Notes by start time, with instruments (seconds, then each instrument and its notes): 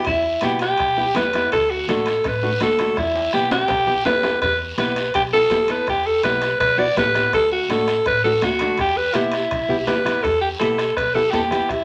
0.05 upright bass E2, alto saxophone E4, bombo low, bombo rim, high conga, high timbale, long guiro
0.41 upright bass B1, nylon-string guitar B3 E4 F#4, alto saxophone G4, bombo rim, high conga, high timbale, short guiro
0.59 alto saxophone G4, bombo rim, high timbale, short guiro
0.77 upright bass B1, bombo low, bombo rim, high conga, high timbale, long guiro
0.97 nylon-string guitar B3 E4 G4
1.15 upright bass E2, nylon-string guitar B3 E4 G4, alto saxophone B4, bombo rim, high conga, high timbale, low timbale, short guiro
1.33 nylon-string guitar B3 E4 G4, bombo rim, high timbale, short guiro
1.52 upright bass D2, alto saxophone A4, bombo low, bombo rim, high conga, high timbale, long guiro
1.71 alto saxophone F#4
1.88 upright bass A1, nylon-string guitar A3 D4 F#4, alto saxophone A4, bombo rim, high conga, high timbale, short guiro
2.06 bombo rim, high timbale, short guiro
2.24 upright bass A1, alto saxophone B4, bombo low, bombo rim, high conga, high timbale, long guiro
2.43 nylon-string guitar A3 D4 F#4
2.60 upright bass D2, nylon-string guitar A3 D4 F#4, alto saxophone A4, bombo rim, high conga, high timbale, short guiro
2.79 nylon-string guitar A3 D4 F#4, bombo rim, high timbale, short guiro
2.97 upright bass E2, alto saxophone E4, bombo low, bombo rim, high conga, high timbale, long guiro
3.16 high timbale
3.33 upright bass B1, nylon-string guitar B3 E4 G4, alto saxophone G4, bombo rim, high conga, short guiro
3.51 alto saxophone G4, bombo rim, low timbale, short guiro
3.68 upright bass B1, bombo low, bombo rim, high conga, low timbale, long guiro
3.87 nylon-string guitar B3 E4 G4
4.05 upright bass E2, nylon-string guitar B3 E4 G4, alto saxophone B4, bombo rim, high conga, low timbale, short guiro
4.23 nylon-string guitar B3 E4 G4, bombo rim, low timbale, short guiro
4.42 upright bass E2, alto saxophone B4, bombo low, bombo rim, high timbale, long guiro
4.78 upright bass B1, nylon-string guitar B3 E4 G4, alto saxophone B4, bombo rim, high conga, high timbale, short guiro
4.96 bombo rim, high timbale, short guiro
5.14 upright bass B1, alto saxophone G4, bombo low, bombo rim, high timbale, long guiro
5.33 nylon-string guitar B3 E4 F#4, alto saxophone A4
5.50 upright bass E2, nylon-string guitar B3 E4 G4, bombo rim, high conga, high timbale, short guiro
5.68 nylon-string guitar B3 E4 A4, alto saxophone B4, bombo rim, high timbale, short guiro
5.87 upright bass E2, alto saxophone G4, bombo low, bombo rim, high timbale, long guiro
6.07 alto saxophone A4
6.23 upright bass B1, nylon-string guitar B3 E4 G4, alto saxophone B4, bombo rim, high conga, high timbale, short guiro
6.42 bombo rim, high timbale, short guiro
6.60 upright bass B1, alto saxophone B4, bombo low, bombo rim, high conga, high timbale, long guiro
6.78 nylon-string guitar B3 E4 F#4, alto saxophone D5
6.96 upright bass A1, nylon-string guitar B3 E4 G4, alto saxophone B4, bombo low, bombo rim, high conga, high timbale, low timbale, short guiro
7.15 nylon-string guitar B3 E4 G4, bombo rim, high timbale, short guiro
7.32 upright bass D2, alto saxophone A4, bombo low, bombo rim, high conga, high timbale, long guiro
7.52 alto saxophone F#4
7.69 upright bass A1, nylon-string guitar A3 D4 F#4, alto saxophone A4, bombo rim, high conga, high timbale, short guiro
7.88 bombo rim, high timbale, short guiro
8.06 upright bass A1, alto saxophone B4, bombo low, bombo rim, high conga, high timbale, long guiro
8.24 nylon-string guitar A3 D4 F#4, alto saxophone A4
8.42 upright bass D2, nylon-string guitar A3 D4 F#4, alto saxophone F#4, bombo rim, high conga, high timbale, low timbale, short guiro
8.59 nylon-string guitar A3 D4 F#4, bombo rim, high timbale, short guiro
8.77 upright bass E2, alto saxophone G4, bombo low, bombo rim, high conga, high timbale, long guiro
8.97 alto saxophone B4
9.14 upright bass B1, nylon-string guitar B3 E4 G4, alto saxophone E4, bombo rim, high conga, high timbale, short guiro
9.32 bombo rim, high timbale, short guiro
9.51 upright bass B1, bombo low, bombo rim, high conga, high timbale, long guiro
9.69 upright bass B1, nylon-string guitar B3 E4 G4
9.87 upright bass D2, nylon-string guitar B3 E4 G4, alto saxophone B4, bombo rim, high conga, high timbale, low timbale, short guiro
10.05 upright bass E2, nylon-string guitar B3 E4 G4, bombo rim, high timbale, short guiro
10.23 upright bass E2, alto saxophone A4, bombo low, bombo rim, high conga, high timbale, long guiro
10.41 alto saxophone G4
10.60 upright bass B1, nylon-string guitar B3 E4 G4, alto saxophone A4, bombo rim, high conga, high timbale, short guiro
10.78 bombo rim, high timbale, short guiro
10.97 upright bass B1, alto saxophone B4, bombo low, bombo rim, high conga, high timbale, long guiro
11.15 nylon-string guitar B3 E4 G4, alto saxophone A4
11.31 upright bass E2, nylon-string guitar B3 E4 A4, alto saxophone G4, bombo low, bombo rim, high conga, high timbale, low timbale, short guiro
11.51 nylon-string guitar B3 E4 G4, bombo rim, high timbale, short guiro
11.69 upright bass E2, alto saxophone E4, bombo low, bombo rim, high timbale, long guiro